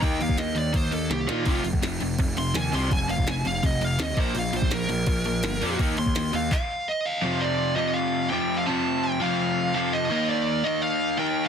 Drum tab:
CC |x-x-x-x-x-x-----|x-x-x-x-x-x-x-x-|x-x-x-x-x-x-x-x-|x-x-x-x-x-x-x-x-|
CP |----------------|----------------|----------------|----------------|
SD |----o-------o-o-|----o-------o---|----o-------o---|----o-------o---|
BD |o--o----o-------|o--o----o-------|o--o----o-----o-|---o----o-------|

CC |x-x-x-x---------|----------------|----------------|----------------|
CP |--------x-------|----------------|----------------|----------------|
SD |----o-----------|----------------|----------------|----------------|
BD |o--o----o-------|----------------|----------------|----------------|